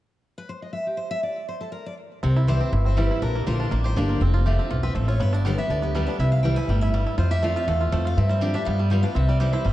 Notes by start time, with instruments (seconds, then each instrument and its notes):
0.38 steel-string acoustic guitar B4
0.49 steel-string acoustic guitar C5
0.62 steel-string acoustic guitar D#5
0.73 steel-string acoustic guitar E5
0.87 steel-string acoustic guitar G4
0.97 steel-string acoustic guitar C5
1.11 steel-string acoustic guitar E5
1.23 steel-string acoustic guitar D5
1.49 steel-string acoustic guitar C5
1.61 steel-string acoustic guitar A4
1.72 steel-string acoustic guitar A#4
1.86 steel-string acoustic guitar D5
2.23 upright bass C2, steel-string acoustic guitar C3 A#4, five-string banjo C4
2.36 five-string banjo E4
2.47 steel-string acoustic guitar E3 G3 C4 E4 C5, five-string banjo G4
2.60 five-string banjo C4, steel-string acoustic guitar C4 E4
2.72 upright bass G1, steel-string acoustic guitar G2, five-string banjo E4
2.85 five-string banjo C4, steel-string acoustic guitar C5
2.97 steel-string acoustic guitar E3 G3 C4 E4 G4, five-string banjo G3
3.11 five-string banjo E4
3.22 upright bass A#1, steel-string acoustic guitar A#2 A#4, five-string banjo D4
3.35 five-string banjo A#3
3.46 upright bass A#1, steel-string acoustic guitar D3 A#3 D4 F4 C5, five-string banjo G4
3.60 five-string banjo D4
3.71 upright bass A1, steel-string acoustic guitar F2, five-string banjo A#3
3.84 five-string banjo G4, steel-string acoustic guitar C5
3.96 upright bass G1, steel-string acoustic guitar D3 A#3 D4 F4 G4, five-string banjo D4
4.09 five-string banjo A#3
4.21 upright bass F1, steel-string acoustic guitar F2, five-string banjo C4
4.34 five-string banjo F4
4.46 steel-string acoustic guitar F3 A3 C4 F4, five-string banjo G4
4.59 five-string banjo C4, steel-string acoustic guitar C4 F4
4.71 upright bass B1, steel-string acoustic guitar E2, five-string banjo F4
4.83 five-string banjo C4, steel-string acoustic guitar B4
4.95 upright bass A1, steel-string acoustic guitar F2 C5, five-string banjo A3
5.08 five-string banjo F4, steel-string acoustic guitar C#5
5.20 upright bass G1, steel-string acoustic guitar G2 B4, five-string banjo B3
5.33 five-string banjo D4, steel-string acoustic guitar D5
5.45 steel-string acoustic guitar D3 G3 B3 G4 F5, five-string banjo G4
5.58 five-string banjo B3, steel-string acoustic guitar B3 G4 E5
5.68 upright bass D2, steel-string acoustic guitar D3 D5, five-string banjo D4
5.82 five-string banjo B3, steel-string acoustic guitar G4
5.95 steel-string acoustic guitar D3 G3 B3 G4 B4, five-string banjo G3
6.07 steel-string acoustic guitar B3 G4 D5, five-string banjo D4
6.19 upright bass C2, steel-string acoustic guitar C3 E5, five-string banjo E4
6.32 steel-string acoustic guitar F5
6.43 steel-string acoustic guitar E3 G3 C4 E4 G5, five-string banjo G3
6.56 steel-string acoustic guitar C4 E4 G#5, five-string banjo E4
6.68 upright bass G1, steel-string acoustic guitar A2 G5, five-string banjo G3
6.81 five-string banjo E4, steel-string acoustic guitar E5
6.94 steel-string acoustic guitar G2, five-string banjo G3
7.06 five-string banjo E4
7.18 upright bass F2, steel-string acoustic guitar F2 C5, five-string banjo F4
7.31 five-string banjo G4, steel-string acoustic guitar E5
7.42 steel-string acoustic guitar F3 A3 C4 F4 D5, five-string banjo A3
7.56 steel-string acoustic guitar C4 F4 E5, five-string banjo F4
7.67 upright bass E2, steel-string acoustic guitar E2 F5, five-string banjo A3
7.80 five-string banjo F4, steel-string acoustic guitar A4
7.92 steel-string acoustic guitar F2 C5, upright bass F2, five-string banjo A3
8.05 five-string banjo F4, steel-string acoustic guitar F5
8.17 upright bass G2, steel-string acoustic guitar G2 E5, five-string banjo C4
8.29 five-string banjo G3, steel-string acoustic guitar C5
8.41 steel-string acoustic guitar F3 C4 D4 G4 D5, five-string banjo G4
8.54 five-string banjo D4, steel-string acoustic guitar D4 G4 E5
8.65 upright bass G2, steel-string acoustic guitar G3 F5, five-string banjo B3
8.79 five-string banjo G3, steel-string acoustic guitar A4
8.90 steel-string acoustic guitar G3 B3 F4 D5, five-string banjo G4
9.03 steel-string acoustic guitar B3 F4 F5, five-string banjo D4
9.15 upright bass C2, steel-string acoustic guitar C3 E5, five-string banjo C4
9.29 five-string banjo G3, steel-string acoustic guitar D5
9.40 steel-string acoustic guitar E3 G3 C4 E4 C5, five-string banjo G4
9.53 five-string banjo E4, steel-string acoustic guitar C5
9.64 upright bass G1, steel-string acoustic guitar G2, five-string banjo G3